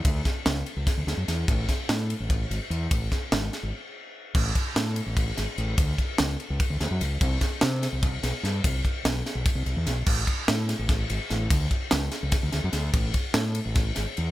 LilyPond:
<<
  \new Staff \with { instrumentName = "Fingered electric bass" } { \clef bass \time 7/8 \key d \lydian \tempo 4 = 147 d,8 r8 cis,8 r16 cis,16 r16 d,16 d,16 fis,16 e,8 | a,,8 r8 a,8. a,,8. gis,,16 r16 e,8 | a,,8 r8 gis,,8 r16 gis,,16 r4. | a,,8 r8 a,8. a,,8. gis,,16 r16 a,,8 |
d,8 r8 cis,8 r16 cis,16 r16 d,16 d,16 fis,16 cis,8 | c,8 r8 c8. c,8. b,,16 r16 g,8 | c,8 r8 b,,8 r16 b,,16 r16 c,16 c,16 e,16 b,,8 | a,,8 r8 a,8. a,,8. gis,,16 r16 a,,8 |
d,8 r8 cis,8 r16 cis,16 r16 d,16 d,16 fis,16 d,8 | a,,8 r8 a,8. a,,8. gis,,16 r16 e,8 | }
  \new DrumStaff \with { instrumentName = "Drums" } \drummode { \time 7/8 <bd cymr>8 <bd cymr sn>8 <cymr sn>8 cymr8 <bd cymr sn>8 <cymr sn>8 <cymr sn>8 | <bd cymr>8 <bd cymr sn>8 <cymr sn>8 cymr8 <bd cymr>8 cymr8 cymr8 | <bd cymr>8 <bd cymr sn>8 <cymr sn>8 <cymr sn>8 r4. | <cymc bd>8 <bd cymr>8 <cymr sn>8 cymr8 <bd cymr>8 <cymr sn>8 cymr8 |
<bd cymr>8 <bd cymr>8 <cymr sn>8 cymr8 <bd cymr>8 <cymr sn>8 cymr8 | <bd cymr>8 <bd cymr sn>8 <cymr sn>8 <cymr sn>8 <bd cymr>8 <cymr sn>8 <cymr sn>8 | <bd cymr>8 <bd cymr>8 <cymr sn>8 <cymr sn>8 <bd cymr>8 cymr8 <cymr sn>8 | <cymc bd>8 <bd cymr>8 <cymr sn>8 <cymr sn>8 <bd cymr sn>8 cymr8 <cymr sn>8 |
<bd cymr>8 <bd cymr>8 <cymr sn>8 <cymr sn>8 <bd cymr sn>8 <cymr sn>8 <cymr sn>8 | <bd cymr>8 <bd cymr>8 <cymr sn>8 cymr8 <bd cymr sn>8 <cymr sn>8 cymr8 | }
>>